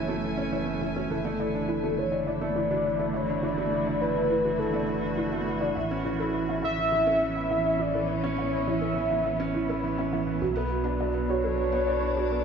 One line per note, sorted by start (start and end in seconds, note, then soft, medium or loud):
0.00 1.07 F#1 medium
0.00 0.23 E3 medium
0.00 1.10 F#3 medium
0.00 0.08 A3 medium
0.00 0.37 C#4 medium
0.00 2.87 A4 medium
0.00 0.51 C#5 medium
0.00 2.60 E5 medium
0.00 2.12 G#5 medium
0.08 0.16 A3 medium
0.08 0.11 F#4 medium
0.23 0.37 E3 medium
0.37 0.51 C#4 medium
0.37 0.40 C#5 medium
0.52 0.60 E3 medium
0.52 0.60 C#5 medium
0.66 0.80 A3 medium
0.81 0.89 E3 medium
0.81 0.86 E4 medium
0.96 1.10 C#4 medium
0.96 0.99 F#4 medium
1.09 5.73 F#1 medium
1.09 5.75 D3 medium
1.09 1.24 E3 medium
1.09 2.00 A4 medium
1.24 1.33 A3 medium
1.24 1.28 D5 medium
1.40 1.53 E3 medium
1.40 1.47 D5 medium
1.55 1.68 D4 medium
1.66 1.77 E3 medium
1.66 5.76 A3 medium
1.66 1.74 E4 medium
1.83 1.97 A3 medium
1.83 1.86 F#4 medium
1.98 2.06 E3 medium
1.98 2.29 C#5 medium
2.12 2.26 D4 medium
2.12 2.15 D5 medium
2.27 2.41 E3 medium
2.27 2.34 D5 medium
2.27 3.17 D5 loud
2.38 2.49 A3 medium
2.38 6.81 E4 medium
2.56 2.70 E3 medium
2.56 2.61 E4 medium
2.71 2.84 D4 medium
2.71 2.73 F#4 medium
2.85 2.93 E3 medium
2.99 3.13 A3 medium
2.99 3.02 D5 medium
3.14 3.22 E3 medium
3.14 3.45 C#5 medium
3.14 3.22 D5 medium
3.20 7.36 F#4 medium
3.30 3.43 D4 medium
3.43 3.57 E3 medium
3.43 3.48 E4 medium
3.43 4.02 D5 loud
3.58 3.66 A3 medium
3.58 3.61 F#4 medium
3.72 3.86 E3 medium
3.86 4.00 D4 medium
3.86 3.90 D5 medium
4.01 4.10 E3 medium
4.01 4.58 B4 medium
4.01 4.09 D5 medium
4.16 4.30 A3 medium
4.30 4.39 E3 medium
4.30 4.36 E4 medium
4.45 4.59 D4 medium
4.45 4.48 F#4 medium
4.59 4.73 E3 medium
4.59 5.43 A4 medium
4.74 4.82 A3 medium
4.74 4.77 D5 medium
4.88 5.02 E3 medium
4.88 4.96 D5 medium
5.03 5.17 D4 medium
5.17 5.26 E3 medium
5.17 5.23 E4 medium
5.32 5.46 A3 medium
5.32 5.35 F#4 medium
5.47 5.55 E3 medium
5.61 5.75 D4 medium
5.61 5.64 D5 medium
5.75 10.39 A1 medium
5.75 10.42 A2 medium
5.75 5.90 E3 medium
5.75 5.84 E5 medium
5.91 5.99 C#4 medium
6.05 6.19 E3 medium
6.05 6.10 E4 medium
6.19 6.34 E4 medium
6.19 6.23 A4 medium
6.34 6.42 E3 medium
6.43 10.42 E3 medium
6.49 6.63 C#4 medium
6.49 6.52 E5 medium
6.63 6.71 E3 medium
6.63 6.71 E5 medium
6.63 7.83 E5 loud
6.77 6.86 E3 medium
6.92 7.06 E3 medium
6.92 10.42 C#4 medium
6.92 6.97 E4 medium
7.06 7.15 C#4 medium
7.06 7.10 A4 medium
7.21 7.35 E3 medium
7.35 11.30 B3 medium
7.35 7.49 E4 medium
7.35 7.39 E5 medium
7.50 7.59 E3 medium
7.50 7.59 E5 medium
7.64 7.79 C#4 medium
7.79 7.88 E3 medium
7.79 7.85 E4 medium
7.79 8.11 D5 medium
7.94 8.02 E3 medium
7.94 7.98 A4 medium
8.09 8.23 E3 medium
8.09 8.69 C#5 loud
8.23 8.32 C#4 medium
8.23 8.27 E5 medium
8.38 8.52 E3 medium
8.38 8.46 E5 medium
8.53 8.67 E4 medium
8.67 8.75 E3 medium
8.67 8.73 E4 medium
8.67 9.84 E5 medium
8.81 8.95 C#4 medium
8.81 8.85 A4 medium
8.96 9.04 E3 medium
9.10 9.19 E3 medium
9.10 9.14 E5 medium
9.25 9.39 E3 medium
9.25 9.33 E5 medium
9.40 9.48 C#4 medium
9.54 9.68 E3 medium
9.54 9.60 E4 medium
9.69 9.83 E4 medium
9.69 9.72 A4 medium
9.83 9.92 E3 medium
9.98 10.12 C#4 medium
9.98 10.02 E5 medium
10.13 10.21 E3 medium
10.13 10.21 E5 medium
10.27 10.35 E3 medium
10.41 12.45 B1 medium
10.41 12.45 B2 medium
10.41 10.56 F#3 medium
10.41 10.47 F#4 medium
10.55 10.64 B3 medium
10.55 10.60 A4 medium
10.70 10.84 F#3 medium
10.84 10.99 D4 medium
10.84 10.89 D5 medium
10.97 11.08 F#3 medium
10.97 12.45 D4 medium
10.97 11.08 D5 medium
11.14 11.28 B3 medium
11.27 12.45 F#3 medium
11.27 11.37 F#3 medium
11.27 11.35 F#4 medium
11.27 12.45 C#5 loud
11.43 11.52 F#3 medium
11.43 11.47 A4 medium
11.57 11.72 F#3 medium
11.72 11.81 B3 medium
11.72 11.76 D5 medium
11.87 12.01 F#3 medium
11.87 11.95 D5 medium
12.02 12.16 D4 medium
12.16 12.25 F#3 medium
12.16 12.22 F#4 medium
12.31 12.45 B3 medium
12.31 12.35 A4 medium